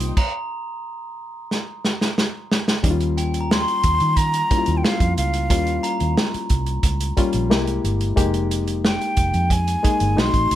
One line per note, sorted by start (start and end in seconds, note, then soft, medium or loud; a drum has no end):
0.00 0.11 C2 medium
0.00 0.18 G3 medium
0.00 0.19 A#3 medium
0.00 0.18 C4 medium
0.00 0.19 C#4 medium
0.00 0.13 D#4 medium
0.00 0.19 D#4 medium
0.00 0.19 F4 medium
0.00 0.13 C5 medium
0.00 0.12 G5 medium
0.00 0.28 C6 soft
0.00 0.47 D#6 soft
0.00 closed hi-hat medium
0.17 1.47 A#5 medium
0.17 kick medium
0.17 crash medium
1.51 snare medium
1.85 snare medium
2.01 snare medium
2.18 snare medium
2.52 snare medium
2.68 snare medium
2.83 3.63 D#2 medium
2.83 3.88 G3 medium
2.83 3.89 A#3 medium
2.83 3.89 C#4 medium
2.83 2.90 D#4 medium
2.83 kick loud
2.83 closed hi-hat medium
2.91 3.92 F4 medium
3.00 closed hi-hat soft
3.17 4.62 G5 soft
3.17 closed hi-hat medium
3.34 closed hi-hat soft
3.41 4.82 A#5 medium
3.51 4.18 C6 loud
3.51 snare loud
3.62 5.01 C6 medium
3.68 closed hi-hat soft
3.83 3.98 D#2 medium
3.83 kick medium
3.83 closed hi-hat medium
4.00 4.42 D#3 medium
4.00 closed hi-hat soft
4.17 4.79 A#5 loud
4.17 kick medium
4.17 closed hi-hat medium
4.34 closed hi-hat medium
4.50 5.29 G3 medium
4.50 5.29 A#3 medium
4.50 5.29 C#4 medium
4.50 4.58 E4 medium
4.50 muted fingered electric bass stroke soft
4.50 kick medium
4.50 closed hi-hat medium
4.58 5.33 F4 medium
4.66 4.81 D#2 medium
4.66 closed hi-hat medium
4.77 4.85 G5 medium
4.84 5.17 F5 medium
4.84 snare loud
5.00 5.14 F2 medium
5.00 kick medium
5.00 closed hi-hat medium
5.17 5.50 C#2 medium
5.17 6.13 F5 medium
5.17 closed hi-hat medium
5.33 closed hi-hat medium
5.50 5.78 D#2 medium
5.50 6.55 G3 medium
5.50 6.55 A#3 medium
5.50 6.56 C#4 medium
5.50 6.56 F4 medium
5.50 kick loud
5.50 closed hi-hat medium
5.67 closed hi-hat soft
5.83 7.28 A#5 medium
5.83 closed hi-hat medium
6.00 6.14 D#2 medium
6.00 closed hi-hat soft
6.17 snare loud
6.34 muted fingered electric bass stroke soft
6.34 closed hi-hat soft
6.49 6.78 C2 medium
6.49 kick medium
6.49 closed hi-hat medium
6.66 closed hi-hat soft
6.83 7.11 C#2 loud
6.83 kick medium
6.83 closed hi-hat medium
7.00 closed hi-hat medium
7.17 7.50 G3 medium
7.17 7.49 A#3 medium
7.17 7.51 C#4 medium
7.17 7.51 F4 medium
7.17 kick medium
7.17 closed hi-hat medium
7.33 7.51 A#1 medium
7.33 closed hi-hat soft
7.50 7.78 C2 loud
7.50 8.04 G#3 medium
7.50 8.04 A#3 medium
7.50 8.04 E4 medium
7.50 8.04 G4 loud
7.50 snare loud
7.67 closed hi-hat medium
7.84 8.11 G1 medium
7.84 closed hi-hat medium
8.01 closed hi-hat medium
8.16 8.97 F1 medium
8.16 9.22 G#3 medium
8.16 9.22 A#3 medium
8.16 9.22 D#4 medium
8.16 9.22 G4 medium
8.16 kick loud
8.16 closed hi-hat medium
8.34 closed hi-hat soft
8.51 closed hi-hat medium
8.67 closed hi-hat medium
8.85 9.53 G5 medium
8.85 snare loud
9.01 closed hi-hat soft
9.17 9.31 F1 medium
9.17 kick medium
9.17 closed hi-hat medium
9.34 9.75 F2 medium
9.34 closed hi-hat soft
9.50 10.21 G#5 medium
9.50 kick medium
9.50 closed hi-hat medium
9.67 closed hi-hat medium
9.83 10.17 G#3 medium
9.83 10.17 A#3 medium
9.83 10.16 D#4 medium
9.83 10.17 G#4 medium
9.83 muted fingered electric bass stroke soft
9.83 kick medium
9.83 closed hi-hat medium
10.00 10.14 G1 medium
10.00 closed hi-hat soft
10.16 10.31 B1 loud
10.16 10.55 A3 medium
10.16 10.55 C4 medium
10.16 10.55 D#4 medium
10.16 10.55 F#4 medium
10.16 10.55 C6 medium
10.16 snare loud
10.34 10.48 A1 medium
10.34 kick medium
10.34 closed hi-hat medium
10.51 10.55 C#2 medium
10.51 closed hi-hat medium